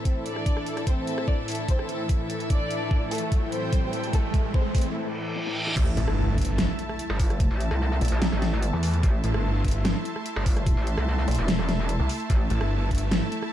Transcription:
Already playing: supersaw synth A2 E3 E4 A4, violin section C4, string section A4 E5 A5, riser
0.05 kick, closed hi-hat
0.26 violin section D4 D5, closed hi-hat
0.36 cross-stick
0.46 kick, closed hi-hat
0.57 cross-stick
0.66 closed hi-hat
0.77 cross-stick, closed hi-hat
0.87 violin section C4 C5, kick, closed hi-hat
1.07 closed hi-hat
1.18 cross-stick
1.28 violin section D4 D5, kick
1.48 closed hi-hat, open hi-hat
1.55 closed hi-hat
1.68 violin section C4 C5, kick, closed hi-hat
1.79 cross-stick
1.89 closed hi-hat
2.09 kick, closed hi-hat
2.30 closed hi-hat
2.40 closed hi-hat
2.50 violin section D4 D5, kick, closed hi-hat
2.71 closed hi-hat
2.91 kick
3.11 violin section A3 A4, closed hi-hat, open hi-hat
3.18 closed hi-hat
3.32 kick, closed hi-hat
3.36 string section G5
3.52 violin section C4 C5, closed hi-hat
3.73 kick, closed hi-hat
3.93 closed hi-hat
4.04 closed hi-hat
4.13 violin section A3 A4, kick, closed hi-hat
4.34 kick, closed hi-hat
4.54 violin section C4 C5, kick
4.75 kick, closed hi-hat, open hi-hat
4.81 closed hi-hat
4.95 reverse cymbal
5.36 high tom
5.47 high tom
5.67 mid tom
5.77 wobble bass A1, supersaw synth A3 E4 E5 A5, kick, closed hi-hat, crash, impact
5.95 detuned saw bass A1, string section A5, closed hi-hat
6.08 detuned saw bass G1, cross-stick
6.38 detuned saw bass G1, kick, closed hi-hat
6.41 closed hi-hat
6.45 closed hi-hat
6.58 snare, closed hi-hat
6.79 closed hi-hat
6.89 cross-stick
6.99 closed hi-hat
7.10 wobble bass G1, cross-stick
7.20 kick, open hi-hat
7.30 cross-stick, closed hi-hat
7.40 kick, closed hi-hat
7.51 wobble bass A1
7.60 closed hi-hat
7.71 wobble bass C2, cross-stick
8.01 detuned saw bass A#1, closed hi-hat
8.05 closed hi-hat
8.08 wobble bass A#1, closed hi-hat
8.22 snare, closed hi-hat
8.32 wobble bass A1, cross-stick
8.42 snare, closed hi-hat
8.63 closed hi-hat
8.73 detuned saw bass E2
8.83 open hi-hat
8.94 closed hi-hat
9.03 wobble bass A1, supersaw synth C6, kick, closed hi-hat
9.24 detuned saw bass A1, closed hi-hat
9.34 detuned saw bass G1, cross-stick
9.64 detuned saw bass G1, kick, closed hi-hat
9.68 closed hi-hat
9.71 closed hi-hat
9.85 snare, closed hi-hat
10.05 closed hi-hat
10.16 cross-stick
10.26 closed hi-hat
10.36 wobble bass G1, cross-stick
10.46 kick, open hi-hat
10.57 cross-stick, closed hi-hat
10.67 kick, closed hi-hat
10.77 wobble bass A1
10.87 closed hi-hat
10.98 wobble bass C2, cross-stick
11.28 detuned saw bass A#1, closed hi-hat
11.31 closed hi-hat
11.35 wobble bass E1, closed hi-hat
11.48 snare, closed hi-hat
11.59 cross-stick
11.69 snare, closed hi-hat
11.89 closed hi-hat
12.00 detuned saw bass C2
12.09 open hi-hat
12.20 closed hi-hat
12.30 wobble bass A1, supersaw synth A5, kick, closed hi-hat
12.50 detuned saw bass A1, closed hi-hat
12.61 detuned saw bass G1, cross-stick
12.91 detuned saw bass G1, kick, closed hi-hat
12.95 closed hi-hat
12.98 closed hi-hat
13.12 snare, closed hi-hat
13.32 closed hi-hat
13.43 cross-stick

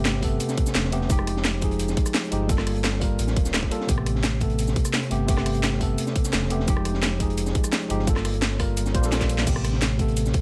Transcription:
Already playing: sub bass G1, tine electric piano C3 A3 B3 G4 A4
0.05 snare, closed hi-hat, shaker
0.14 snare
0.20 tine electric piano C3 A3 B3 A4, kick, closed hi-hat, open hi-hat
0.40 closed hi-hat, shaker
0.49 snare, shaker
0.57 kick, closed hi-hat
0.66 snare, shaker
0.75 sub bass E1, snare, closed hi-hat, shaker
0.84 snare
0.91 tine electric piano C3 A3 B3 G4, closed hi-hat
1.01 snare
1.08 sub bass F1, tine electric piano F3 G#3 D#4, kick, closed hi-hat, shaker
1.12 tine electric piano G4
1.19 cross-stick
1.27 cross-stick, closed hi-hat
1.36 snare
1.44 snare, closed hi-hat, shaker
1.60 tine electric piano F3 G#3 D#4 G#4, kick, closed hi-hat
1.71 closed hi-hat
1.80 closed hi-hat, shaker
1.88 snare, shaker
1.97 kick, closed hi-hat
2.06 cross-stick, closed hi-hat, shaker
2.14 snare, closed hi-hat, shaker
2.23 closed hi-hat
2.31 sub bass G1, tine electric piano F3 G#3 D#4 G4, closed hi-hat
2.47 tine electric piano G3 A#3 F4, kick, closed hi-hat, shaker
2.51 tine electric piano A4
2.58 cross-stick, snare
2.67 cross-stick, closed hi-hat, open hi-hat
2.76 closed hi-hat
2.84 snare, closed hi-hat, shaker
2.93 snare
3.00 tine electric piano G3 A#3 F4, kick, closed hi-hat, open hi-hat
3.04 tine electric piano A#4
3.19 sub bass A1, closed hi-hat, shaker
3.27 snare, shaker
3.36 sub bass D1, kick, closed hi-hat
3.45 snare, shaker
3.54 snare, closed hi-hat, shaker
3.63 kick, snare
3.70 tine electric piano G3 A#3 F4 A4, closed hi-hat
3.80 snare
3.87 sub bass A1, tine electric piano C3 A3 B3 G4, kick, closed hi-hat, shaker
3.98 cross-stick
4.06 cross-stick, closed hi-hat
4.15 snare
4.24 snare, closed hi-hat, shaker
4.39 tine electric piano C3 A3 B3 A4, kick, closed hi-hat
4.50 closed hi-hat
4.59 closed hi-hat, shaker
4.67 snare, shaker
4.76 kick, closed hi-hat
4.85 cross-stick, closed hi-hat, shaker
4.93 snare, closed hi-hat, shaker
5.03 closed hi-hat
5.10 sub bass G1, tine electric piano C3 A3 B3 G4, closed hi-hat
5.27 tine electric piano C3 A3 B3 G4, kick, closed hi-hat, shaker
5.37 cross-stick, snare
5.46 cross-stick, closed hi-hat, open hi-hat
5.54 closed hi-hat
5.63 snare, closed hi-hat, shaker
5.72 snare
5.79 tine electric piano C3 A3 B3 A4, kick, closed hi-hat, open hi-hat
5.98 closed hi-hat, shaker
6.07 snare, shaker
6.16 kick, closed hi-hat
6.24 snare, shaker
6.33 sub bass E1, snare, closed hi-hat, shaker
6.42 snare
6.50 tine electric piano C3 A3 B3 G4, closed hi-hat
6.60 snare
6.66 sub bass F1, tine electric piano F3 G#3 D#4 G4, kick, closed hi-hat, shaker
6.77 cross-stick
6.85 cross-stick, closed hi-hat
6.94 snare
7.03 snare, closed hi-hat, shaker
7.18 tine electric piano F3 G#3 D#4 G#4, kick, closed hi-hat
7.30 closed hi-hat
7.38 closed hi-hat, shaker
7.46 snare, shaker
7.55 kick, closed hi-hat
7.63 cross-stick, closed hi-hat, shaker
7.72 snare, closed hi-hat, shaker
7.81 closed hi-hat
7.89 sub bass G1, tine electric piano F3 G#3 D#4 G4, closed hi-hat
7.99 snare
8.05 tine electric piano G3 A#3 F4, kick, closed hi-hat, shaker
8.09 tine electric piano A4
8.16 cross-stick, snare
8.25 cross-stick, closed hi-hat, open hi-hat
8.34 closed hi-hat
8.42 snare, closed hi-hat, shaker
8.52 snare
8.59 tine electric piano G3 A#3 F4 A#4, kick, cross-stick, closed hi-hat, open hi-hat
8.77 closed hi-hat, shaker
8.86 snare, shaker
8.94 sub bass A#1, tine electric piano G3 A#3 F4 C5, kick, closed hi-hat
9.01 tine electric piano G3 A#3 F4, snare, shaker
9.06 tine electric piano A4
9.12 snare, closed hi-hat, shaker
9.21 kick, snare, shaker
9.29 closed hi-hat, shaker
9.38 snare
9.45 sub bass A1, tine electric piano C3 A3 B3 G4, kick, closed hi-hat, crash, shaker
9.56 cross-stick
9.64 cross-stick, closed hi-hat
9.73 snare
9.82 snare, closed hi-hat, shaker
9.97 tine electric piano C3 A3 B3 A4, kick, closed hi-hat
10.08 closed hi-hat
10.17 closed hi-hat, shaker
10.26 snare, shaker
10.33 kick, closed hi-hat

